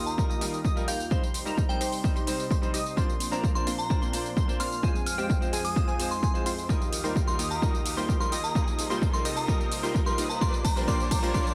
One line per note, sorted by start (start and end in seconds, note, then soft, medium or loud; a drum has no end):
0.00 1.09 D#2 medium
0.00 1.09 D#3 medium
0.00 0.27 A#3 medium
0.00 0.27 D#4 medium
0.00 0.27 F4 medium
0.00 0.27 G4 medium
0.00 1.09 G4 medium
0.00 0.27 D#5 medium
0.00 1.09 F5 medium
0.00 0.27 D#6 medium
0.00 riser medium
0.06 0.23 A#5 medium
0.06 tambourine soft
0.17 0.27 G3 medium
0.17 0.28 D#4 medium
0.17 0.28 F4 medium
0.17 0.28 A#4 medium
0.17 kick loud
0.17 tambourine soft
0.30 0.62 A#3 medium
0.30 0.62 D#4 medium
0.30 0.62 F4 medium
0.30 0.62 G4 medium
0.30 0.62 D#5 medium
0.30 0.62 D#6 medium
0.30 tambourine soft
0.41 0.57 G3 medium
0.41 0.57 D#4 medium
0.41 0.57 F4 medium
0.41 0.57 A#4 loud
0.41 open hi-hat loud
0.41 tambourine medium
0.54 tambourine soft
0.65 0.85 A#3 loud
0.65 0.85 D#4 medium
0.65 0.85 F4 medium
0.65 0.85 G4 medium
0.65 0.85 D#5 loud
0.65 0.85 D#6 loud
0.65 kick loud
0.65 tambourine soft
0.76 0.91 G3 medium
0.76 0.92 D#4 medium
0.76 0.92 F4 medium
0.76 0.92 A#4 loud
0.76 tambourine soft
0.88 1.08 A#3 medium
0.88 1.08 D#4 medium
0.88 1.08 F4 medium
0.88 1.08 G4 medium
0.88 1.05 F5 medium
0.88 1.08 G5 medium
0.88 1.08 G6 medium
0.88 open hi-hat medium
0.88 tambourine medium
1.00 tambourine soft
1.10 2.95 C3 medium
1.10 1.20 G3 medium
1.10 2.95 G3 medium
1.10 1.21 C4 medium
1.10 1.43 D#4 medium
1.10 2.95 D#4 medium
1.10 1.21 D#4 medium
1.10 1.43 G4 medium
1.10 1.43 C5 loud
1.10 4.80 C5 medium
1.10 1.21 C5 loud
1.10 1.43 C6 loud
1.10 kick loud
1.10 tambourine soft
1.23 tambourine soft
1.34 open hi-hat loud
1.34 tambourine medium
1.45 1.61 G3 medium
1.45 1.61 C4 medium
1.45 1.78 D#4 medium
1.45 1.62 D#4 medium
1.45 1.78 G4 medium
1.45 1.78 A#4 medium
1.45 1.62 C5 loud
1.45 1.78 A#5 medium
1.45 tambourine soft
1.58 kick loud
1.58 tambourine soft
1.69 1.79 G3 medium
1.69 1.79 C4 medium
1.69 1.79 D#4 medium
1.69 1.79 C5 loud
1.69 2.34 G5 medium
1.69 tambourine soft
1.81 2.13 D#4 medium
1.81 2.13 G4 medium
1.81 2.13 C5 medium
1.81 2.13 C6 loud
1.81 open hi-hat loud
1.81 tambourine medium
1.92 open hi-hat medium
1.92 tambourine soft
2.03 2.13 G3 medium
2.03 2.14 C4 medium
2.03 2.14 D#4 medium
2.03 2.14 C5 loud
2.03 kick loud
2.03 tambourine soft
2.16 2.48 D#4 medium
2.16 2.48 G4 medium
2.16 2.48 C5 medium
2.16 2.48 C6 medium
2.16 tambourine soft
2.27 2.43 G3 medium
2.27 2.43 C4 medium
2.27 2.43 D#4 medium
2.27 2.43 C5 loud
2.27 open hi-hat loud
2.27 tambourine medium
2.40 tambourine soft
2.51 2.71 D#4 loud
2.51 2.71 G4 medium
2.51 2.71 C5 loud
2.51 2.71 C6 loud
2.51 kick loud
2.51 tambourine soft
2.61 2.77 G3 medium
2.61 2.78 C4 medium
2.61 2.78 D#4 medium
2.61 2.78 C5 loud
2.61 tambourine soft
2.74 2.94 D#4 medium
2.74 2.94 G4 medium
2.74 2.94 D#5 loud
2.74 2.94 D#6 loud
2.74 open hi-hat loud
2.74 tambourine medium
2.86 tambourine soft
2.96 4.81 A#2 medium
2.96 4.81 F3 medium
2.96 3.06 A#3 medium
2.96 3.29 A#3 medium
2.96 3.29 C4 medium
2.96 3.07 D4 medium
2.96 4.81 D4 medium
2.96 3.29 D4 medium
2.96 3.29 F4 medium
2.96 3.07 F4 medium
2.96 3.29 C5 loud
2.96 3.07 C5 medium
2.96 3.29 C6 loud
2.96 kick loud
2.96 tambourine soft
3.09 tambourine soft
3.20 open hi-hat loud
3.20 tambourine medium
3.31 3.47 A#3 medium
3.31 3.64 A#3 medium
3.31 3.64 C4 medium
3.31 3.47 D4 medium
3.31 3.64 D4 medium
3.31 3.64 F4 medium
3.31 3.48 F4 medium
3.31 3.64 A#4 medium
3.31 3.48 C5 loud
3.31 3.64 A#5 medium
3.31 tambourine soft
3.44 kick loud
3.44 tambourine soft
3.55 3.65 A#3 medium
3.55 3.65 D4 medium
3.55 3.65 F4 medium
3.55 3.65 C5 loud
3.55 3.72 C6 medium
3.55 tambourine soft
3.67 3.99 A#3 medium
3.67 3.99 C4 medium
3.67 3.99 D4 medium
3.67 3.99 F4 medium
3.67 3.99 C5 loud
3.67 3.99 C6 loud
3.67 open hi-hat loud
3.67 tambourine medium
3.79 3.95 A#5 medium
3.79 tambourine soft
3.89 3.99 A#3 medium
3.89 4.00 D4 medium
3.89 4.00 F4 medium
3.89 4.00 C5 loud
3.89 kick loud
3.89 tambourine soft
4.02 4.34 A#3 medium
4.02 4.34 C4 medium
4.02 4.34 D4 medium
4.02 4.34 F4 medium
4.02 4.34 C5 loud
4.02 4.34 C6 loud
4.02 tambourine soft
4.13 4.29 A#3 medium
4.13 4.29 D4 medium
4.13 4.29 F4 medium
4.13 4.29 C5 loud
4.13 open hi-hat loud
4.13 tambourine medium
4.26 tambourine soft
4.37 4.57 A#3 loud
4.37 4.57 C4 medium
4.37 4.57 D4 medium
4.37 4.57 F4 medium
4.37 4.57 C5 loud
4.37 4.57 C6 loud
4.37 kick loud
4.37 tambourine soft
4.48 4.63 A#3 medium
4.48 4.64 D4 medium
4.48 4.64 F4 medium
4.48 4.64 C5 loud
4.48 tambourine soft
4.60 4.80 A#3 medium
4.60 4.80 C4 medium
4.60 4.80 D4 medium
4.60 4.80 F4 medium
4.60 4.80 F5 loud
4.60 4.88 C6 medium
4.60 4.80 F6 loud
4.60 open hi-hat loud
4.60 tambourine medium
4.72 tambourine soft
4.83 6.67 F2 medium
4.83 6.67 F3 medium
4.83 4.93 G#3 medium
4.83 6.67 G#3 medium
4.83 4.93 C4 medium
4.83 5.15 C4 loud
4.83 5.15 F4 medium
4.83 4.93 F4 medium
4.83 5.15 G#4 loud
4.83 6.67 C5 medium
4.83 4.93 C5 loud
4.83 5.15 G#5 loud
4.83 kick loud
4.83 tambourine soft
4.95 tambourine soft
5.06 5.41 F6 medium
5.06 open hi-hat loud
5.06 tambourine medium
5.17 5.33 G#3 medium
5.17 5.33 C4 medium
5.17 5.50 C4 medium
5.17 5.50 F4 medium
5.17 5.34 F4 medium
5.17 5.50 G4 medium
5.17 5.34 C5 loud
5.17 5.50 G5 medium
5.17 tambourine soft
5.30 kick loud
5.30 tambourine soft
5.41 5.51 G#3 medium
5.41 5.51 C4 medium
5.41 5.51 F4 medium
5.41 5.51 C5 loud
5.41 tambourine soft
5.53 5.85 C4 medium
5.53 5.85 F4 medium
5.53 5.85 G#4 medium
5.53 5.85 G#5 loud
5.53 open hi-hat loud
5.53 tambourine medium
5.65 6.09 D#6 medium
5.65 open hi-hat medium
5.65 tambourine soft
5.76 5.86 G#3 medium
5.76 5.86 C4 medium
5.76 5.86 F4 medium
5.76 5.86 C5 loud
5.76 kick loud
5.76 tambourine soft
5.88 6.20 C4 medium
5.88 6.20 F4 medium
5.88 6.20 G#4 medium
5.88 6.20 G#5 medium
5.88 tambourine soft
5.99 6.15 G#3 medium
5.99 6.15 C4 medium
5.99 6.15 F4 medium
5.99 6.15 C5 loud
5.99 open hi-hat loud
5.99 tambourine medium
6.11 6.46 C6 medium
6.11 tambourine soft
6.23 6.43 C4 loud
6.23 6.43 F4 medium
6.23 6.43 G#4 loud
6.23 6.43 G#5 loud
6.23 kick loud
6.23 tambourine soft
6.34 6.50 G#3 medium
6.34 6.50 C4 medium
6.34 6.50 F4 medium
6.34 6.50 C5 loud
6.34 tambourine soft
6.46 6.66 C4 medium
6.46 6.66 F4 medium
6.46 6.66 C5 loud
6.46 6.66 C6 loud
6.46 open hi-hat loud
6.46 tambourine medium
6.58 tambourine soft
6.69 8.53 D#2 medium
6.69 8.54 D#3 medium
6.69 6.79 G3 medium
6.69 7.01 A#3 medium
6.69 6.79 D#4 medium
6.69 7.01 D#4 medium
6.69 7.01 F4 medium
6.69 6.79 F4 medium
6.69 7.01 G4 medium
6.69 8.54 G4 medium
6.69 6.79 A#4 medium
6.69 7.01 D#5 loud
6.69 8.54 F5 medium
6.69 7.01 D#6 loud
6.69 kick loud
6.69 tambourine soft
6.82 tambourine soft
6.93 open hi-hat loud
6.93 tambourine medium
7.04 7.19 G3 medium
7.04 7.36 A#3 medium
7.04 7.20 D#4 medium
7.04 7.36 D#4 medium
7.04 7.36 F4 medium
7.04 7.20 F4 medium
7.04 7.36 G4 medium
7.04 7.20 A#4 loud
7.04 7.36 C5 medium
7.04 7.36 C6 medium
7.04 tambourine soft
7.16 kick loud
7.16 tambourine soft
7.27 7.37 G3 medium
7.27 7.37 D#4 medium
7.27 7.37 F4 medium
7.27 7.37 A#4 medium
7.27 7.44 C6 medium
7.27 tambourine soft
7.39 7.60 A#3 medium
7.39 7.60 D#4 medium
7.39 7.60 F4 medium
7.39 7.60 G4 medium
7.39 7.60 D#5 medium
7.39 7.60 D#6 medium
7.39 open hi-hat loud
7.39 tambourine medium
7.51 7.61 A#5 medium
7.51 tambourine soft
7.62 7.72 G3 medium
7.62 7.94 A#3 medium
7.62 7.72 D#4 medium
7.62 7.94 D#4 medium
7.62 7.72 F4 medium
7.62 7.94 F4 medium
7.62 7.94 G4 medium
7.62 7.72 A#4 medium
7.62 7.94 D#5 loud
7.62 7.94 D#6 loud
7.62 kick loud
7.62 tambourine soft
7.75 tambourine soft
7.86 open hi-hat loud
7.86 tambourine medium
7.96 8.12 G3 medium
7.96 8.29 A#3 medium
7.96 8.12 D#4 medium
7.96 8.29 D#4 medium
7.96 8.13 F4 medium
7.96 8.29 F4 medium
7.96 8.29 G4 medium
7.96 8.13 A#4 medium
7.96 8.29 C5 medium
7.96 8.29 C6 medium
7.96 tambourine soft
8.09 kick loud
8.09 tambourine soft
8.20 8.30 G3 medium
8.20 8.30 D#4 medium
8.20 8.30 F4 medium
8.20 8.30 A#4 medium
8.20 8.37 C6 medium
8.20 tambourine soft
8.32 8.53 A#3 medium
8.32 8.53 D#4 medium
8.32 8.53 F4 medium
8.32 8.53 G4 medium
8.32 8.54 D#5 medium
8.32 8.53 D#6 medium
8.32 open hi-hat loud
8.32 tambourine medium
8.44 8.53 A#5 medium
8.44 tambourine soft
8.55 10.39 C3 medium
8.55 8.65 G3 medium
8.55 10.40 G3 medium
8.55 8.87 A#3 medium
8.55 8.65 D#4 medium
8.55 10.39 D#4 medium
8.55 8.87 D#4 medium
8.55 8.87 F4 medium
8.55 8.65 F4 medium
8.55 8.87 G4 medium
8.55 8.65 A#4 medium
8.55 10.39 C5 medium
8.55 8.87 D#5 loud
8.55 8.87 D#6 loud
8.55 kick loud
8.55 tambourine soft
8.68 tambourine soft
8.79 open hi-hat loud
8.79 tambourine medium
8.90 9.05 G3 medium
8.90 9.22 A#3 medium
8.90 9.06 D#4 medium
8.90 9.22 D#4 medium
8.90 9.22 F4 medium
8.90 9.06 F4 medium
8.90 9.22 G4 medium
8.90 9.06 A#4 loud
8.90 9.22 C5 medium
8.90 9.22 C6 medium
8.90 tambourine soft
9.02 kick loud
9.02 tambourine soft
9.13 9.23 G3 medium
9.13 9.23 D#4 medium
9.13 9.23 F4 medium
9.13 9.23 A#4 loud
9.13 9.30 C6 medium
9.13 tambourine soft
9.25 9.47 A#3 medium
9.25 9.46 D#4 medium
9.25 9.46 F4 medium
9.25 9.46 G4 medium
9.25 9.47 D#5 medium
9.25 9.46 D#6 medium
9.25 open hi-hat loud
9.25 tambourine medium
9.37 9.46 A#5 medium
9.37 open hi-hat medium
9.37 tambourine soft
9.47 9.58 G3 medium
9.47 9.80 A#3 medium
9.47 9.58 D#4 medium
9.47 9.80 D#4 medium
9.47 9.80 F4 medium
9.47 9.58 F4 medium
9.47 9.80 G4 medium
9.47 9.58 A#4 loud
9.47 9.80 D#5 loud
9.47 9.80 D#6 loud
9.47 kick loud
9.47 tambourine soft
9.61 tambourine soft
9.72 open hi-hat loud
9.72 tambourine medium
9.82 9.98 G3 medium
9.82 10.15 A#3 medium
9.82 9.99 D#4 medium
9.82 10.15 D#4 medium
9.82 10.15 F4 medium
9.82 9.99 F4 medium
9.82 10.15 G4 medium
9.82 9.99 A#4 loud
9.82 10.15 C5 medium
9.82 10.15 C6 medium
9.82 tambourine soft
9.95 kick loud
9.95 tambourine soft
10.06 10.16 G3 medium
10.06 10.16 D#4 medium
10.06 10.16 F4 medium
10.06 10.16 A#4 loud
10.06 10.23 C6 medium
10.06 tambourine soft
10.18 10.40 A#3 medium
10.18 10.40 D#4 medium
10.18 10.40 F4 medium
10.18 10.39 G4 medium
10.18 10.39 D#5 loud
10.18 10.39 D#6 loud
10.18 open hi-hat loud
10.18 tambourine medium
10.30 10.39 A#5 medium
10.30 tambourine soft
10.41 11.54 A#2 medium
10.41 11.54 F3 medium
10.41 10.51 G3 medium
10.41 10.74 A#3 loud
10.41 10.51 D4 medium
10.41 11.54 D4 medium
10.41 10.73 D4 medium
10.41 10.51 F4 medium
10.41 10.73 F4 medium
10.41 10.74 G4 medium
10.41 10.51 A#4 loud
10.41 11.54 C5 medium
10.41 10.73 D5 loud
10.41 10.58 C6 medium
10.41 10.73 D6 loud
10.41 kick loud
10.41 tambourine soft
10.54 tambourine soft
10.65 10.81 A#5 medium
10.65 kick loud
10.65 open hi-hat loud
10.65 tambourine medium
10.76 10.86 G3 medium
10.76 10.86 A#3 medium
10.76 10.86 D4 medium
10.76 10.86 F4 medium
10.76 10.86 G4 medium
10.76 10.86 A#4 loud
10.76 10.86 C5 medium
10.76 10.86 C6 medium
10.76 tambourine soft
10.87 10.97 G3 medium
10.87 11.20 A#3 loud
10.87 10.97 D4 medium
10.87 11.20 D4 medium
10.87 11.20 F4 medium
10.87 10.98 F4 medium
10.87 11.20 G4 medium
10.87 10.98 A#4 loud
10.87 11.20 D5 loud
10.87 11.05 C6 medium
10.87 11.20 D6 loud
10.87 kick loud
10.87 tambourine soft
11.00 tambourine soft
11.11 11.28 A#5 medium
11.11 kick loud
11.11 open hi-hat loud
11.11 tambourine medium
11.22 11.32 G3 loud
11.22 11.33 A#3 medium
11.22 11.32 D4 medium
11.22 11.33 D4 medium
11.22 11.33 F4 medium
11.22 11.33 G4 medium
11.22 11.33 A#4 loud
11.22 11.33 C5 medium
11.22 11.33 C6 medium
11.22 tambourine soft
11.34 11.44 G3 medium
11.34 11.54 A#3 medium
11.34 11.44 D4 medium
11.34 11.54 D4 medium
11.34 11.54 F4 medium
11.34 11.44 F4 medium
11.34 11.54 G4 medium
11.34 11.44 A#4 loud
11.34 11.54 D5 loud
11.34 11.51 C6 medium
11.34 11.54 D6 loud
11.34 kick loud
11.34 tambourine soft
11.47 tambourine soft